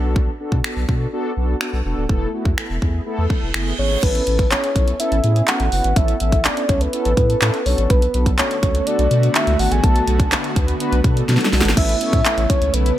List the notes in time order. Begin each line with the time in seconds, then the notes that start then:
Already playing: B1 B3 D4 F#4 A4
0.16 kick
0.40 B3 D4 F#4 A4
0.52 B2, kick
0.64 B3 D4 F#4 A4, finger snap
0.76 B1
0.88 B2 B3 D4 F#4 A4, kick
1.12 B3 D4 F#4 A4
1.37 B1 B3 F#4 A4
1.61 B3 D4 F#4 A4, finger snap
1.73 B1
1.85 E1 B3 D4 F#4 A4
1.98 D1
2.09 E1 A3 B3 E4 A4, kick
2.33 A3 B3 E4 F#4
2.45 E2, kick
2.58 A3 B3 E4 A4, finger snap
2.70 E1
2.82 E2 A3 B3 E4 G#4, kick
3.06 A3 B3 E4 A4, reverse cymbal
3.18 E2
3.30 A3 B3 E4 A4, kick
3.43 E1
3.54 F#1 A3 B3 E4 G#4, finger snap
3.78 G#1 A3 B3 E4 G#4 C#5
4.03 A1 B3 C#4 E4 A4 B4, kick, closed hi-hat, crash
4.15 closed hi-hat
4.27 A1 B3 C#4 E4 A4, closed hi-hat
4.39 kick, closed hi-hat
4.51 B3 C#4 E4 G#4 C#5, clap, closed hi-hat
4.64 closed hi-hat
4.75 B1 B3 C#4 E4 A4, kick, closed hi-hat
4.88 closed hi-hat
4.99 B3 C#4 E4 A4 E5, closed hi-hat
5.12 A1, closed hi-hat
5.24 A2 B3 C#4 E4 G#4, closed hi-hat
5.36 closed hi-hat
5.48 B3 C#4 E4 A4 F#5, clap, closed hi-hat
5.60 A1, closed hi-hat
5.72 F#1 B3 C#4 E4 B4 F#5, open hi-hat
5.84 G#1, closed hi-hat
5.96 A1 B3 C#4 E4 A4 E5, kick, closed hi-hat
6.08 closed hi-hat
6.20 A1 B3 C#4 E4 A4 E5, closed hi-hat
6.32 kick, closed hi-hat
6.44 B3 C#4 E4 A4 D5, clap, closed hi-hat
6.57 closed hi-hat
6.69 C#2 B3 C#4 E4 A4 C#5, kick, closed hi-hat
6.81 B4, closed hi-hat
6.93 B3 C#4 E4 A4, closed hi-hat
7.05 A1, closed hi-hat
7.17 A2 C#4 E4 A4, kick, closed hi-hat
7.30 closed hi-hat
7.41 A2 B3 C#4 E4 A4, clap, closed hi-hat
7.54 closed hi-hat
7.66 B1 B3 D4 F#4 A4 C#5, open hi-hat
7.78 A1, closed hi-hat
7.90 B1 D3 A3 B3 F#4 B4, kick, closed hi-hat
8.02 closed hi-hat
8.14 B1 B3 D4 F#4 A4 B4, closed hi-hat
8.26 kick, closed hi-hat
8.39 B3 D4 F#4 A4 C#5, clap, closed hi-hat
8.51 closed hi-hat
8.63 C#2 B3 D4 F#4 A4, kick, closed hi-hat
8.75 closed hi-hat
8.86 B3 D4 F#4 A4 D5, closed hi-hat
8.99 B1, closed hi-hat
9.11 B2 B3 D4 F#4 A4, closed hi-hat
9.23 closed hi-hat
9.35 B3 D4 F#4 A4 E5, clap, closed hi-hat
9.47 C#2, closed hi-hat
9.59 G#1 B3 D4 F#4 A4 F#5, open hi-hat
9.72 A1 G#5, closed hi-hat
9.83 B1 B3 D4 F#4 A4 A5, kick, closed hi-hat
9.96 closed hi-hat
10.07 B1 B3 D4 F#4 A4, closed hi-hat
10.20 kick, closed hi-hat
10.32 B3 D4 F#4 A4, clap, closed hi-hat
10.44 closed hi-hat
10.56 D2 B3 D4 F#4 B4, kick, closed hi-hat
10.68 closed hi-hat
10.80 B3 D4 F#4 B4, closed hi-hat
10.92 B1, closed hi-hat
11.04 B2 B3 D4 F#4 A4, kick, closed hi-hat
11.17 closed hi-hat
11.28 B2 B3 D4 F#4 A4, snare, closed hi-hat
11.37 snare, closed hi-hat
11.45 snare
11.53 B1 B3 D4 F#4 A4, snare, open hi-hat
11.61 G#1, snare
11.65 snare, closed hi-hat
11.77 A1 C#3 A3 B3 C#4 E4 B4 E5, kick, closed hi-hat, crash
11.89 closed hi-hat
12.01 B3 C#4 E4 A4 C#5, closed hi-hat
12.13 A2, kick, closed hi-hat
12.25 B3 E4 A4, clap, closed hi-hat
12.37 A1, closed hi-hat
12.50 B3 C#4 E4 A4 C#5, kick, closed hi-hat
12.61 C#2, closed hi-hat
12.74 B1 B3 C#4 E4 A4 B4, closed hi-hat
12.86 closed hi-hat